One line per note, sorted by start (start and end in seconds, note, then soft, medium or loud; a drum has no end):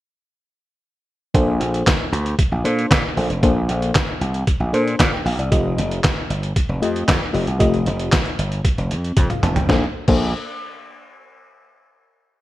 1.34 1.56 A#1 medium
1.34 1.88 A#3 medium
1.34 1.89 D4 medium
1.34 1.89 A4 medium
1.34 1.89 C5 medium
1.34 kick loud
1.34 closed hi-hat medium
1.60 1.82 A#1 loud
1.60 closed hi-hat medium
1.74 closed hi-hat medium
1.87 kick loud
1.87 snare loud
1.87 clap loud
1.87 closed hi-hat medium
2.12 2.34 D2 medium
2.12 closed hi-hat medium
2.26 closed hi-hat medium
2.39 kick loud
2.39 closed hi-hat loud
2.52 2.62 A#1 medium
2.64 2.86 A#2 loud
2.64 2.91 A#3 medium
2.64 2.92 D4 medium
2.64 2.92 A4 medium
2.64 2.92 C5 medium
2.64 closed hi-hat medium
2.79 closed hi-hat soft
2.91 3.02 A#2 loud
2.91 kick loud
2.91 snare loud
2.91 clap medium
2.91 closed hi-hat medium
3.16 3.28 A#1 medium
3.16 3.30 A#3 medium
3.16 3.30 D4 medium
3.16 3.30 A4 medium
3.16 3.31 C5 medium
3.16 open hi-hat medium
3.30 3.41 F1 medium
3.30 closed hi-hat medium
3.43 3.64 A#1 loud
3.43 3.97 A#3 medium
3.43 3.97 D4 medium
3.43 3.97 A4 medium
3.43 3.97 C5 medium
3.43 kick loud
3.43 closed hi-hat medium
3.69 3.90 A#1 loud
3.69 closed hi-hat medium
3.82 closed hi-hat medium
3.95 kick loud
3.95 snare loud
3.95 clap loud
3.95 closed hi-hat loud
4.21 4.43 C2 medium
4.21 closed hi-hat medium
4.34 closed hi-hat medium
4.47 kick loud
4.47 closed hi-hat medium
4.60 4.71 A#1 medium
4.73 4.95 A#2 medium
4.73 5.00 A#3 medium
4.73 5.00 D4 medium
4.73 5.01 A4 medium
4.73 5.01 C5 loud
4.73 closed hi-hat medium
4.87 closed hi-hat soft
4.99 5.10 A#2 loud
4.99 kick loud
4.99 snare loud
4.99 clap medium
4.99 closed hi-hat loud
5.13 5.25 G5 medium
5.25 5.36 A#1 medium
5.25 5.38 F5 medium
5.25 open hi-hat medium
5.38 5.49 C2 medium
5.38 5.64 D5 medium
5.38 closed hi-hat medium
5.51 5.73 F1 loud
5.51 6.06 A3 medium
5.51 6.06 F4 medium
5.51 6.06 G4 medium
5.51 6.06 D#5 medium
5.51 kick loud
5.51 closed hi-hat medium
5.78 5.99 F1 loud
5.78 closed hi-hat medium
5.91 closed hi-hat medium
6.04 kick loud
6.04 snare loud
6.04 clap medium
6.04 closed hi-hat medium
6.30 6.51 G1 medium
6.30 closed hi-hat medium
6.43 closed hi-hat medium
6.56 kick loud
6.56 closed hi-hat medium
6.69 6.80 F1 medium
6.82 7.04 F2 medium
6.82 7.09 A3 medium
6.82 7.09 F4 medium
6.82 7.09 G4 medium
6.82 7.09 D#5 medium
6.82 closed hi-hat medium
6.96 closed hi-hat soft
7.08 7.19 F2 loud
7.08 kick loud
7.08 snare loud
7.08 clap medium
7.08 closed hi-hat loud
7.33 7.45 F1 medium
7.33 7.47 A3 medium
7.33 7.47 F4 medium
7.33 7.48 G4 medium
7.33 7.48 D#5 medium
7.33 open hi-hat medium
7.47 7.58 C2 medium
7.47 closed hi-hat medium
7.59 7.82 F1 loud
7.59 8.14 A3 medium
7.59 8.14 F4 medium
7.59 8.14 G4 medium
7.59 8.14 D#5 loud
7.59 kick loud
7.59 closed hi-hat medium
7.74 closed hi-hat soft
7.86 8.08 F1 loud
7.86 closed hi-hat medium
7.99 closed hi-hat medium
8.12 kick loud
8.12 snare loud
8.12 clap loud
8.12 closed hi-hat loud
8.25 closed hi-hat soft
8.39 8.60 G1 medium
8.39 closed hi-hat medium
8.52 closed hi-hat medium
8.65 kick loud
8.65 closed hi-hat medium
8.78 8.92 F1 medium
8.78 closed hi-hat soft
8.91 9.12 F2 medium
8.91 closed hi-hat medium
9.04 closed hi-hat soft
9.17 9.27 F2 loud
9.17 kick loud
9.17 closed hi-hat loud
9.17 high tom medium
9.30 9.42 F5 medium
9.30 closed hi-hat soft
9.30 mid tom medium
9.43 9.54 F1 loud
9.43 9.55 A5 medium
9.43 closed hi-hat medium
9.43 mid tom medium
9.56 9.67 F1 medium
9.56 9.81 G5 medium
9.56 closed hi-hat medium
9.56 floor tom medium
9.69 9.83 A#1 loud
9.69 9.84 A#3 medium
9.69 9.83 D4 medium
9.69 9.84 A4 medium
9.69 9.84 C5 medium
9.69 kick loud
9.69 snare medium
10.08 10.32 A#1 medium
10.08 10.33 A#3 medium
10.08 10.33 D4 medium
10.08 10.33 A4 medium
10.08 10.33 C5 medium
10.08 kick loud
10.08 crash medium